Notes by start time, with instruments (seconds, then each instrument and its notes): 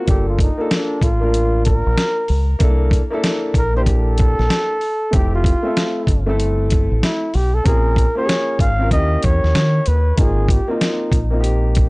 0.06 fingered electric bass G1, upright piano A#3 D4 F4 A4, flugelhorn G4, kick, closed hi-hat
0.29 flugelhorn F4
0.39 flugelhorn D#4, kick, closed hi-hat
0.58 upright piano A#3 D4 F4 A4
0.71 flugelhorn D4, snare, closed hi-hat
1.01 fingered electric bass A1, flugelhorn F4, kick, closed hi-hat
1.20 upright piano A#3 D4 F4 A#4
1.34 closed hi-hat
1.65 flugelhorn A#4, kick, closed hi-hat
1.86 fingered electric bass A#1
1.98 snare, closed hi-hat
2.28 fingered electric bass C#2, open hi-hat
2.59 fingered electric bass C2, upright piano A#3 D4 E4 A4, kick, closed hi-hat
2.91 kick, closed hi-hat
3.10 upright piano A#3 D4 E4 A4
3.24 snare, closed hi-hat
3.54 fingered electric bass A#1, flugelhorn A#4, kick, closed hi-hat
3.74 upright piano A#3 D4 E4 G4, flugelhorn C5
3.86 flugelhorn A4, kick, closed hi-hat
4.18 kick, closed hi-hat
4.39 fingered electric bass A#1, snare
4.50 snare, closed hi-hat
4.81 open hi-hat
5.11 fingered electric bass F1, upright piano A3 C4 E4 G4, flugelhorn G4, kick, closed hi-hat
5.35 flugelhorn F4
5.44 kick, closed hi-hat
5.63 upright piano A3 C4 A4 E5
5.77 snare, closed hi-hat
6.07 fingered electric bass G1, kick, closed hi-hat
6.26 upright piano A3 C4 E4 A4
6.40 closed hi-hat
6.70 kick, closed hi-hat
6.92 fingered electric bass A1
7.03 flugelhorn E4, snare, closed hi-hat
7.34 fingered electric bass B1, flugelhorn G4, open hi-hat
7.54 flugelhorn A4
7.64 fingered electric bass A#1, upright piano C4 C#4 F4 G#4, flugelhorn A#4, kick, closed hi-hat
7.96 kick, closed hi-hat
8.15 upright piano A#3 C#4 F4 G4, flugelhorn C#5
8.25 upright piano G#4, closed hi-hat
8.29 snare
8.59 fingered electric bass G#1, flugelhorn F5, kick, closed hi-hat
8.79 upright piano C4 C#4 F4 A#4
8.90 fingered electric bass D#2, upright piano A#3 C#4 E4 G4, flugelhorn D#5, kick, closed hi-hat
9.23 fingered electric bass E2, flugelhorn C#5, kick, closed hi-hat
9.44 fingered electric bass D#2, snare
9.55 fingered electric bass D#3, snare, closed hi-hat
9.86 fingered electric bass D#2, flugelhorn B4, closed hi-hat
10.16 fingered electric bass G#1, upright piano A#3 C4 D#4 F4, flugelhorn G#4, kick, closed hi-hat
10.49 flugelhorn G4, kick, closed hi-hat
10.68 upright piano A#3 C4 D#4 F4, flugelhorn D#4
10.81 snare, closed hi-hat
11.12 fingered electric bass A#1, kick, closed hi-hat
11.30 upright piano A#3 C4 D#4 F4
11.41 upright piano G4, closed hi-hat
11.75 kick, closed hi-hat